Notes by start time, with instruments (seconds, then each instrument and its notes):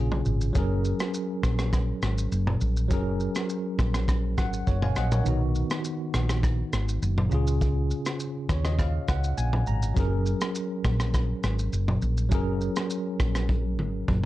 Already playing: fingered electric bass A#1, tine electric piano C#3 C#4 F4 G#4
0.12 mid tom
0.25 fingered electric bass G#1, shaker
0.41 shaker
0.53 fingered electric bass F#1, tine electric piano F#3 C#4 G#4, kick, shaker
0.58 tine electric piano A#4
0.85 shaker
1.00 cross-stick, shaker
1.14 shaker
1.43 fingered electric bass A#1, kick, cross-stick, shaker
1.59 cross-stick, shaker
1.73 kick, cross-stick, shaker
2.02 fingered electric bass G#1, cross-stick, shaker
2.18 shaker
2.32 fingered electric bass F#1, shaker
2.47 mid tom
2.61 fingered electric bass A#1, shaker
2.77 shaker
2.88 fingered electric bass F#1, tine electric piano F#3 C#4 G#4, kick, shaker
2.93 tine electric piano A#4
3.20 shaker
3.35 cross-stick, shaker
3.49 shaker
3.79 fingered electric bass A#1, kick, cross-stick, mid tom, shaker
3.94 cross-stick, shaker
4.08 kick, cross-stick, shaker
4.38 fingered electric bass G#1, tine electric piano F#5, kick, cross-stick, shaker
4.53 shaker
4.67 fingered electric bass F#1, tine electric piano C#5, kick, shaker
4.82 tine electric piano F5 G#5, mid tom
4.96 fingered electric bass A#1, tine electric piano D#5 F#5, cross-stick, shaker
5.12 tine electric piano A#4 C#5, mid tom, shaker
5.24 fingered electric bass B1, tine electric piano D#3 B3 D#4, shaker
5.29 tine electric piano F#4
5.55 shaker
5.70 cross-stick, shaker
5.84 shaker
6.14 fingered electric bass A#1, cross-stick, shaker
6.29 cross-stick, shaker
6.43 kick, cross-stick, shaker
6.73 fingered electric bass G#1, cross-stick, shaker
6.89 shaker
7.02 fingered electric bass F#1, shaker
7.18 mid tom
7.29 fingered electric bass C#2, tine electric piano C#3 C#4 F4, shaker
7.34 tine electric piano G#4
7.47 shaker
7.61 kick, shaker
7.91 shaker
8.06 cross-stick, shaker
8.20 shaker
8.49 fingered electric bass D#2, tine electric piano C#5, kick, cross-stick, shaker
8.65 tine electric piano D#5, cross-stick, shaker
8.79 tine electric piano F5, kick, cross-stick, shaker
9.08 fingered electric bass C#2, tine electric piano F#5, kick, cross-stick, shaker
9.24 shaker
9.38 fingered electric bass A#1, tine electric piano G#5, shaker
9.53 mid tom
9.67 fingered electric bass G#1, tine electric piano A#5, shaker
9.82 shaker
9.94 fingered electric bass F#1, tine electric piano F#3 C#4 G#4, kick, shaker
9.99 tine electric piano A#4
10.26 shaker
10.41 cross-stick, shaker
10.55 shaker
10.85 fingered electric bass A#1, kick, cross-stick, mid tom, shaker
11.00 cross-stick, shaker
11.14 kick, cross-stick, shaker
11.43 fingered electric bass G#1, cross-stick, shaker
11.59 shaker
11.73 fingered electric bass F#1, shaker
11.88 mid tom
12.02 fingered electric bass A#1, shaker
12.17 shaker
12.29 fingered electric bass F#1, tine electric piano F#3 C#4 G#4, kick, shaker
12.34 tine electric piano A#4
12.61 shaker
12.76 cross-stick, shaker
12.90 shaker
13.20 fingered electric bass A#1, kick, cross-stick, shaker
13.35 cross-stick, shaker
13.49 kick, high tom
13.79 fingered electric bass G#1, mid tom
14.08 fingered electric bass F#1, kick, mid tom